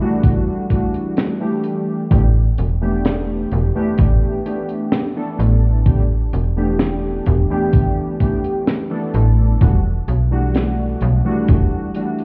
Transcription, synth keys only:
0.00 0.65 E3 medium
0.00 0.65 G3 medium
0.00 0.65 A3 medium
0.00 0.65 D4 medium
0.00 0.65 F#4 loud
0.70 1.35 E3 medium
0.70 1.35 G3 medium
0.70 1.36 A3 medium
0.70 1.36 D4 medium
0.70 1.36 F#4 medium
1.40 2.05 E3 medium
1.40 2.05 G3 medium
1.40 2.05 A3 medium
1.40 2.06 D4 medium
1.40 2.06 G4 medium
2.10 2.29 E3 medium
2.10 2.29 A3 medium
2.10 2.29 B3 medium
2.10 2.30 D4 medium
2.10 2.30 G4 medium
2.81 3.69 E3 medium
2.81 3.70 A3 medium
2.81 3.70 B3 medium
2.81 3.70 D4 medium
2.81 3.70 G4 medium
3.75 4.40 E3 medium
3.75 4.40 A3 medium
3.75 4.40 B3 medium
3.75 4.40 D4 medium
3.75 4.40 G4 loud
4.45 5.10 E3 medium
4.45 5.10 A3 medium
4.45 5.11 B3 medium
4.45 5.11 D4 medium
4.45 5.11 G4 medium
5.16 5.80 E3 medium
5.16 5.81 A3 medium
5.16 5.81 B3 medium
5.16 5.81 D4 medium
5.16 5.81 A4 medium
5.86 6.04 E3 medium
5.86 6.04 A3 medium
5.86 6.05 B3 medium
5.86 6.05 D4 medium
5.86 6.05 G4 medium
6.56 7.45 E3 medium
6.56 7.45 A3 medium
6.56 7.45 B3 medium
6.56 7.45 D4 medium
6.56 7.45 G4 medium
7.50 8.15 E3 medium
7.50 8.15 A3 medium
7.50 8.15 B3 medium
7.50 8.15 D4 medium
7.50 8.15 G4 loud
8.20 8.85 E3 medium
8.20 8.85 A3 medium
8.20 8.85 B3 medium
8.20 8.86 D4 medium
8.20 8.86 G4 medium
8.90 9.55 E3 medium
8.90 9.55 A3 medium
8.90 9.55 B3 medium
8.90 9.56 D4 medium
8.90 9.56 A4 medium
9.60 9.79 E3 medium
9.60 9.79 G3 medium
9.60 9.79 A3 medium
9.60 9.80 D4 medium
9.60 9.80 F#4 medium
10.31 11.19 E3 medium
10.31 11.19 G3 medium
10.31 11.20 A3 medium
10.31 11.20 D4 medium
10.31 11.20 F#4 medium
11.24 11.89 E3 medium
11.24 11.90 G3 medium
11.24 11.90 A3 medium
11.24 11.90 D4 medium
11.24 11.90 F#4 loud
11.95 12.24 E3 medium
11.95 12.24 G3 medium
11.95 12.24 A3 medium
11.95 12.24 D4 medium
11.95 12.24 F#4 medium

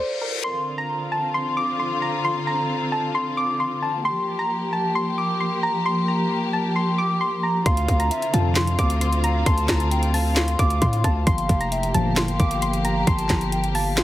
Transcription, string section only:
0.44 4.01 D3 medium
0.44 4.01 C4 medium
0.44 4.01 F4 loud
4.05 7.62 F3 medium
4.05 7.62 A#3 medium
4.05 7.62 G4 loud
7.66 11.23 D3 medium
7.66 11.23 C4 medium
7.66 11.23 F4 loud
11.27 14.03 F3 medium
11.27 14.03 A#3 medium
11.27 14.03 G4 loud

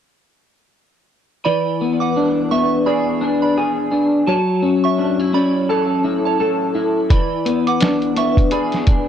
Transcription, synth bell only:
1.45 1.79 D5 medium
1.45 1.78 B5 medium
2.00 2.35 F#5 soft
2.00 2.34 D6 medium
2.51 2.72 E5 medium
2.51 2.71 C#6 medium
2.86 3.07 D5 medium
2.86 3.06 B5 medium
3.42 3.57 D5 soft
3.42 3.56 B5 medium
4.27 4.62 C#5 medium
4.27 4.61 A5 medium
4.84 5.18 E5 medium
4.84 5.18 C#6 medium
5.34 5.54 D5 medium
5.34 5.54 B5 medium
5.70 5.90 C#5 soft
5.70 5.90 A5 medium
6.25 6.40 C#5 soft
6.25 6.39 A5 medium
7.10 7.44 D5 medium
7.10 7.44 B5 medium
7.67 8.01 F#5 soft
7.67 8.01 D6 medium
8.17 8.37 E5 medium
8.17 8.37 C#6 medium
8.52 8.73 D5 soft
8.52 8.72 B5 medium

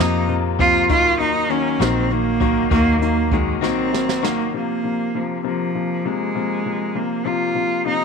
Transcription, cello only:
0.00 0.30 D#4 medium
0.60 0.88 F4 loud
0.91 1.19 F4 loud
1.21 1.52 D#4 loud
1.50 1.82 C#4 medium
1.81 2.13 C4 medium
2.12 2.71 A#3 loud
2.71 2.99 A#3 loud
3.01 3.34 A#3 loud
3.32 3.62 G#3 medium
3.62 4.25 C4 medium
4.24 4.53 A#3 medium
4.55 5.17 A#3 medium
5.16 5.45 F3 medium
5.46 6.07 F3 medium
6.06 6.97 G#3 medium
6.96 7.28 A#3 medium
7.27 7.86 F4 medium
7.87 8.05 D#4 medium

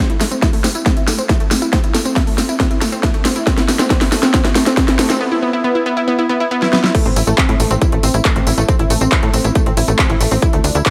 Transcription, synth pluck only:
0.10 0.17 E4 medium
0.21 0.26 A3 medium
0.31 0.36 C4 medium
0.42 0.50 E4 medium
0.53 0.58 A3 medium
0.64 0.69 C4 medium
0.75 0.82 E4 medium
0.86 0.91 C4 medium
0.97 1.04 E4 medium
1.08 1.13 A3 medium
1.18 1.23 C4 medium
1.29 1.37 E4 medium
1.40 1.45 A3 medium
1.51 1.56 C4 medium
1.62 1.69 E4 medium
1.73 1.78 C4 medium
1.84 1.91 E4 medium
1.94 1.99 A3 medium
2.05 2.10 C4 medium
2.16 2.24 E4 medium
2.27 2.32 A3 medium
2.38 2.43 C4 medium
2.49 2.56 E4 medium
2.60 2.65 C4 medium
2.71 2.78 E4 medium
2.81 2.86 A3 medium
2.92 2.97 C4 medium
3.03 3.11 E4 medium
3.14 3.19 A3 medium
3.25 3.30 C4 medium
3.36 3.43 E4 medium
3.47 3.52 C4 medium
3.58 3.65 E4 medium
3.68 3.73 A3 medium
3.79 3.84 C4 medium
3.90 3.95 C4 medium
4.01 4.09 E4 medium
4.12 4.17 A3 medium
4.23 4.28 C4 medium
4.34 4.39 C4 medium
4.45 4.52 E4 medium
4.55 4.60 A3 medium
4.66 4.71 C4 medium
4.77 4.82 C4 medium
4.88 4.95 E4 medium
4.99 5.04 A3 medium
5.10 5.15 C4 medium
5.21 5.26 B3 medium
5.32 5.39 E4 medium
5.43 5.47 B3 medium
5.53 5.61 E4 medium
5.64 5.69 B3 medium
5.75 5.82 E4 medium
5.86 5.91 B3 medium
5.97 6.04 E4 medium
6.08 6.13 B3 medium
6.19 6.26 E4 medium
6.29 6.34 B3 medium
6.40 6.48 E4 medium
6.51 6.56 B3 medium
6.62 6.69 E4 medium
6.73 6.78 B3 medium
6.84 6.91 E4 medium
6.95 7.00 A3 medium
7.05 7.10 C4 medium
7.16 7.24 E4 medium
7.27 7.32 A3 medium
7.38 7.43 C4 medium
7.49 7.56 E4 medium
7.60 7.65 A3 medium
7.71 7.76 C4 medium
7.82 7.89 E4 medium
7.92 7.97 A3 medium
8.03 8.08 C4 medium
8.14 8.22 E4 medium
8.25 8.30 A3 medium
8.36 8.41 C4 medium
8.47 8.54 E4 medium
8.58 8.63 A3 medium
8.69 8.73 C4 medium
8.79 8.87 E4 medium
8.90 8.95 A3 medium
9.01 9.06 C4 medium
9.12 9.19 E4 medium
9.23 9.28 A3 medium
9.33 9.39 C4 medium
9.44 9.52 E4 medium
9.55 9.60 A3 medium
9.66 9.71 C4 medium
9.77 9.85 E4 medium
9.88 9.93 A3 medium
9.99 10.04 C4 medium
10.10 10.17 E4 medium
10.21 10.26 A3 medium
10.31 10.36 C4 medium
10.42 10.50 E4 medium
10.53 10.58 A3 medium
10.64 10.69 D4 medium
10.75 10.82 E4 medium
10.86 10.90 A3 medium

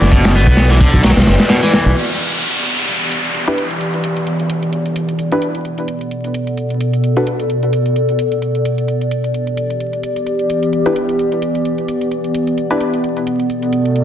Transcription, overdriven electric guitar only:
0.00 0.11 E3 medium
0.12 0.34 B2 medium
0.35 0.69 B3 medium
0.71 0.80 E3 medium
0.81 1.03 D3 medium
1.04 1.10 F#3 medium
1.50 1.59 B2 loud
1.63 1.95 E3 medium

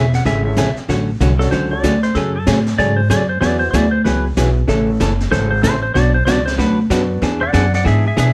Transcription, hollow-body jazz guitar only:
0.25 0.46 C#3 medium
0.25 0.46 E3 medium
0.25 0.46 A3 medium
0.25 0.46 C#4 medium
0.25 0.47 G#4 medium
0.57 0.69 C#3 medium
0.57 0.69 E3 medium
0.57 0.69 A3 medium
0.57 0.69 C#4 medium
0.57 0.69 G#4 medium
0.89 1.10 D3 medium
0.89 1.10 F#3 medium
0.89 1.10 A3 medium
0.89 1.10 C#4 medium
0.89 1.10 F#4 medium
1.20 1.32 D3 medium
1.20 1.32 F#3 medium
1.20 1.32 A3 medium
1.20 1.32 C#4 medium
1.20 1.32 F#4 medium
1.52 1.73 D3 medium
1.52 1.73 F#3 medium
1.52 1.73 A3 medium
1.52 1.73 C#4 medium
1.52 1.73 F#4 medium
1.83 1.95 D3 medium
1.83 1.95 F#3 medium
1.83 1.95 A3 medium
1.83 1.95 C#4 medium
1.83 1.95 F#4 medium
2.16 2.37 C#3 medium
2.16 2.37 F#3 medium
2.16 2.37 A3 medium
2.16 2.37 C#4 medium
2.16 2.37 G#4 medium
2.47 2.58 C#3 medium
2.47 2.58 F#3 medium
2.47 2.59 A3 medium
2.47 2.58 C#4 medium
2.47 2.59 G#4 medium
2.79 3.00 C#3 medium
2.79 2.99 F#3 medium
2.79 3.00 A3 medium
2.79 3.00 C#4 medium
2.79 3.00 G#4 medium
3.10 3.21 C#3 medium
3.10 3.21 F#3 medium
3.10 3.21 A3 medium
3.10 3.22 C#4 medium
3.10 3.22 G#4 medium
3.41 3.62 E3 medium
3.41 3.62 F#3 medium
3.41 3.63 B3 medium
3.41 3.63 E4 medium
3.41 3.63 G#4 medium
3.74 3.85 E3 medium
3.74 3.85 F#3 medium
3.74 3.85 B3 medium
3.74 3.86 E4 medium
3.74 3.85 G#4 medium
4.05 4.26 E3 medium
4.05 4.26 F#3 medium
4.05 4.26 B3 medium
4.05 4.26 E4 medium
4.05 4.27 G#4 medium
4.37 4.48 E3 medium
4.37 4.48 F#3 medium
4.37 4.48 B3 medium
4.37 4.48 E4 medium
4.37 4.49 G#4 medium
4.68 4.89 C#3 medium
4.68 4.89 E3 medium
4.68 4.89 A3 medium
4.68 4.89 C#4 medium
4.68 4.90 A4 medium
5.00 5.12 C#3 medium
5.00 5.12 E3 medium
5.00 5.12 A3 medium
5.00 5.12 C#4 medium
5.00 5.12 A4 medium
5.31 5.52 C#3 medium
5.31 5.52 E3 medium
5.31 5.52 A3 medium
5.31 5.53 C#4 medium
5.31 5.53 A4 medium
5.63 5.75 C#3 medium
5.63 5.75 E3 medium
5.63 5.75 A3 medium
5.63 5.75 C#4 medium
5.63 5.75 A4 medium
5.95 6.16 B2 medium
5.95 6.16 F#3 medium
5.95 6.16 B3 medium
5.95 6.16 D4 medium
5.95 6.16 F#4 medium
6.27 6.38 B2 medium
6.27 6.38 F#3 medium
6.27 6.38 B3 medium
6.27 6.39 D4 medium
6.27 6.39 F#4 medium
6.58 6.79 B2 medium
6.58 6.79 F#3 medium
6.58 6.79 B3 medium
6.58 6.80 D4 medium
6.58 6.80 F#4 medium
6.90 7.02 B2 medium
6.90 7.02 F#3 medium
6.90 7.02 B3 medium
6.90 7.02 D4 medium
6.90 7.02 F#4 medium
7.22 7.43 E3 medium
7.22 7.43 B3 medium
7.22 7.43 D4 medium
7.22 7.43 G#4 medium
7.53 7.65 E3 medium
7.53 7.65 B3 medium
7.53 7.65 D4 medium
7.53 7.65 G#4 medium
7.85 8.06 E3 medium
7.85 8.06 B3 medium
7.85 8.06 D4 medium
7.85 8.06 G#4 medium
8.17 8.28 E3 medium
8.17 8.28 B3 medium
8.17 8.29 D4 medium
8.17 8.29 G#4 medium

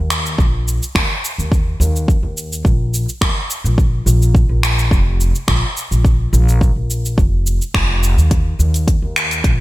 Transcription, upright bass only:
0.00 0.35 D#2 medium
0.39 0.78 A#1 medium
0.95 1.08 D#2 medium
1.38 1.77 D#2 medium
1.80 2.19 D#2 medium
2.23 2.61 D#2 medium
2.65 3.04 A#1 medium
3.21 3.34 D#2 medium
3.64 4.03 A#1 medium
4.06 4.46 A#1 medium
4.49 4.88 A#1 medium
4.91 5.31 F1 medium
5.48 5.60 A#1 medium
5.91 6.29 A#1 medium
6.33 6.72 A#1 medium
6.76 7.14 A#1 medium
7.18 7.57 F1 medium
7.75 8.14 F1 medium
8.18 8.56 D#2 medium
8.59 8.98 D#2 medium
9.02 9.41 D#2 medium
9.44 9.61 A#1 medium

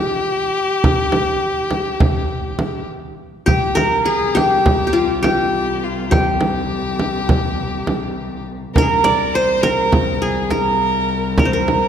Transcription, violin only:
0.00 2.89 G4 medium
3.48 3.78 G4 medium
3.76 4.04 A#4 medium
4.05 4.36 G#4 medium
4.35 5.23 G4 medium
5.24 5.86 G4 medium
5.84 6.13 F4 medium
6.11 8.46 G4 medium
8.74 8.84 A#4 medium
8.82 8.90 G#4 medium
8.89 9.36 A#4 medium
9.34 9.63 C5 medium
9.62 10.24 A#4 medium
10.22 10.52 G#4 medium
10.50 11.38 A#4 medium
11.38 11.51 A#4 medium
11.53 11.88 A#4 medium

